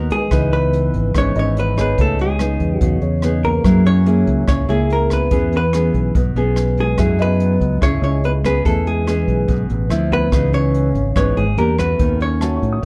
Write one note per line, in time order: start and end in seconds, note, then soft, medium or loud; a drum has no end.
0.00 0.29 D#3 soft
0.00 0.16 B3 medium
0.00 0.17 F#4 soft
0.00 0.17 A#4 medium
0.10 0.49 G#3 medium
0.10 0.54 G#4 medium
0.10 kick soft
0.10 closed hi-hat soft
0.31 0.90 C#2 medium
0.31 1.12 C#3 medium
0.31 1.11 E3 medium
0.31 1.11 B3 medium
0.31 1.12 D#4 medium
0.31 1.83 B4 soft
0.31 kick medium
0.31 cross-stick medium
0.31 closed hi-hat soft
0.52 1.10 B3 medium
0.52 1.17 B4 medium
0.52 closed hi-hat soft
0.73 closed hi-hat soft
0.94 1.13 G#1 medium
0.94 kick soft
0.94 closed hi-hat soft
1.15 1.34 G#1 medium
1.15 1.96 G#2 medium
1.15 1.74 E3 medium
1.15 1.74 B3 soft
1.15 1.35 C#4 medium
1.15 1.74 D#4 medium
1.15 1.38 C#5 loud
1.15 kick medium
1.15 cross-stick medium
1.15 closed hi-hat soft
1.35 1.94 G#1 medium
1.35 1.55 C#4 medium
1.35 1.57 C#5 medium
1.35 2.15 D#5 medium
1.35 closed hi-hat soft
1.57 1.76 B3 medium
1.57 1.79 B4 medium
1.57 closed hi-hat soft
1.77 2.36 B3 medium
1.77 1.97 B3 medium
1.77 2.36 D#4 medium
1.77 2.37 G#4 medium
1.77 2.16 C#5 soft
1.77 kick soft
1.77 cross-stick medium
1.77 closed hi-hat soft
1.81 2.00 B4 medium
1.98 2.57 C#2 medium
1.98 2.79 C#3 medium
1.98 2.18 A3 medium
1.98 2.21 A4 medium
1.98 kick medium
1.98 closed hi-hat soft
2.19 2.77 G#3 medium
2.19 2.77 G#4 medium
2.19 closed hi-hat soft
2.39 2.96 B3 medium
2.39 2.96 D#4 medium
2.39 2.96 G#4 medium
2.39 cross-stick medium
2.39 closed hi-hat soft
2.60 2.80 E2 medium
2.60 kick soft
2.60 closed hi-hat soft
2.77 2.99 F#3 medium
2.77 2.99 F#4 medium
2.81 3.01 E2 medium
2.81 3.63 C#3 medium
2.81 kick medium
2.81 closed hi-hat soft
3.02 3.61 E2 medium
3.02 3.81 C#5 soft
3.02 closed hi-hat soft
3.22 3.50 B3 medium
3.22 3.50 D#4 medium
3.22 3.51 G#4 medium
3.22 cross-stick medium
3.22 closed hi-hat soft
3.44 3.83 A#3 medium
3.44 3.83 A#4 medium
3.44 kick soft
3.44 closed hi-hat soft
3.64 4.23 F#2 medium
3.64 4.46 F#3 medium
3.64 4.03 A#3 medium
3.64 4.03 E4 medium
3.64 4.03 G#4 medium
3.64 kick medium
3.64 cross-stick medium
3.64 closed hi-hat soft
3.84 4.43 C#4 medium
3.84 4.47 C#5 loud
3.84 closed hi-hat soft
4.06 4.65 A#3 medium
4.06 4.66 E4 medium
4.06 4.66 G#4 medium
4.06 closed hi-hat soft
4.27 4.47 C#2 medium
4.27 kick soft
4.27 closed hi-hat soft
4.48 4.67 C#2 medium
4.48 5.29 C#3 medium
4.48 4.68 C#4 medium
4.48 4.70 C#5 loud
4.48 kick medium
4.48 cross-stick medium
4.48 closed hi-hat soft
4.68 5.28 C#2 medium
4.68 4.89 G#3 medium
4.68 5.28 A#3 medium
4.68 5.28 E4 medium
4.68 5.28 G#4 medium
4.68 4.91 G#4 medium
4.68 closed hi-hat soft
4.90 5.09 A#3 medium
4.90 5.13 A#4 medium
4.90 closed hi-hat soft
5.10 5.50 B3 medium
5.10 5.55 B4 medium
5.10 kick soft
5.10 cross-stick soft
5.10 closed hi-hat soft
5.31 5.90 E2 medium
5.31 6.13 E3 medium
5.31 5.58 B3 medium
5.31 5.58 C#4 medium
5.31 5.59 G#4 medium
5.31 kick medium
5.31 closed hi-hat soft
5.52 6.11 B3 medium
5.52 closed hi-hat soft
5.57 6.13 B4 medium
5.73 6.15 B3 medium
5.73 6.15 C#4 medium
5.73 6.15 G#4 medium
5.73 cross-stick medium
5.73 closed hi-hat soft
5.94 6.13 B1 medium
5.94 kick soft
5.94 closed hi-hat soft
6.15 6.34 B1 medium
6.15 6.97 B2 soft
6.15 kick medium
6.15 closed hi-hat soft
6.36 6.94 B1 medium
6.36 6.95 B3 medium
6.36 6.95 C#4 medium
6.36 6.96 G#4 medium
6.36 closed hi-hat soft
6.56 cross-stick medium
6.56 closed hi-hat soft
6.77 7.17 G#3 medium
6.77 7.22 G#4 medium
6.77 kick soft
6.77 closed hi-hat soft
6.97 7.57 F#2 medium
6.97 7.79 F#3 soft
6.97 7.54 A3 medium
6.97 7.54 E4 medium
6.97 7.55 G#4 medium
6.97 kick medium
6.97 cross-stick medium
6.97 closed hi-hat soft
7.19 7.78 B3 medium
7.19 7.83 B4 medium
7.19 8.72 D#5 soft
7.19 closed hi-hat soft
7.40 closed hi-hat soft
7.61 7.80 C#2 medium
7.61 kick soft
7.61 closed hi-hat soft
7.81 8.01 C#2 medium
7.81 8.63 C#3 medium
7.81 8.41 A3 medium
7.81 8.02 C#4 medium
7.81 8.41 E4 medium
7.81 8.41 G#4 medium
7.81 8.03 C#5 medium
7.81 kick medium
7.81 cross-stick medium
7.81 closed hi-hat soft
8.02 8.61 C#2 medium
8.02 8.22 C#4 medium
8.02 8.25 C#5 medium
8.02 closed hi-hat soft
8.24 8.30 B3 medium
8.24 8.31 B4 medium
8.24 closed hi-hat soft
8.44 8.64 B3 medium
8.44 9.04 B3 medium
8.44 9.04 C#4 medium
8.44 9.04 G#4 medium
8.44 8.65 B4 medium
8.44 kick soft
8.44 cross-stick medium
8.44 closed hi-hat soft
8.65 9.24 E2 medium
8.65 9.47 E3 medium
8.65 8.85 A3 medium
8.65 8.87 A4 medium
8.65 kick medium
8.65 closed hi-hat soft
8.86 9.65 G#3 medium
8.86 9.66 G#4 medium
8.86 closed hi-hat soft
9.07 9.87 B3 medium
9.07 9.87 C#4 medium
9.07 9.87 G#4 medium
9.07 cross-stick medium
9.07 closed hi-hat soft
9.28 9.47 B1 medium
9.28 kick soft
9.28 closed hi-hat soft
9.48 9.68 B1 medium
9.48 9.88 B2 medium
9.48 kick medium
9.48 closed hi-hat soft
9.70 9.89 A1 medium
9.70 closed hi-hat soft
9.90 10.29 D2 medium
9.90 10.28 F3 medium
9.90 10.29 C4 soft
9.90 10.29 E4 medium
9.90 cross-stick medium
9.90 closed hi-hat soft
10.11 10.50 B3 medium
10.11 10.54 B4 medium
10.11 kick soft
10.11 closed hi-hat soft
10.31 10.91 C#2 medium
10.31 11.14 C#3 medium
10.31 10.88 E3 medium
10.31 10.88 B3 medium
10.31 10.89 D#4 medium
10.31 kick medium
10.31 cross-stick medium
10.31 closed hi-hat soft
10.51 11.11 C#4 medium
10.51 11.16 C#5 loud
10.51 closed hi-hat soft
10.74 closed hi-hat soft
10.95 11.14 G#1 medium
10.95 kick soft
10.95 closed hi-hat soft
11.15 11.35 G#1 medium
11.15 11.56 G#2 medium
11.15 11.44 E3 soft
11.15 11.44 B3 medium
11.15 11.35 C#4 medium
11.15 11.44 D#4 medium
11.15 11.38 C#5 medium
11.15 kick medium
11.15 cross-stick medium
11.15 closed hi-hat soft
11.36 11.56 G#1 medium
11.36 11.56 G#3 medium
11.36 11.58 G#4 medium
11.36 closed hi-hat soft
11.56 11.96 E2 medium
11.56 11.76 A#3 medium
11.56 11.75 A#3 medium
11.56 11.75 D4 medium
11.56 11.75 G4 medium
11.56 11.79 A#4 medium
11.56 closed hi-hat soft
11.77 12.38 A3 medium
11.77 12.16 B3 medium
11.77 12.38 C#4 medium
11.77 12.38 F#4 medium
11.77 12.22 B4 medium
11.77 kick soft
11.77 cross-stick soft
11.77 closed hi-hat soft
11.99 12.58 D#2 medium
11.99 12.81 D#3 medium
11.99 kick medium
11.99 closed hi-hat soft
12.19 12.78 C#4 medium
12.19 12.80 C#5 medium
12.19 closed hi-hat soft
12.41 12.85 A3 soft
12.41 12.85 C#4 medium
12.41 12.85 F#4 medium
12.41 12.85 A5 soft
12.41 cross-stick medium
12.41 closed hi-hat soft
12.57 12.85 C#6 soft
12.62 12.81 A2 medium
12.62 kick soft
12.62 closed hi-hat soft
12.73 12.85 D#6 soft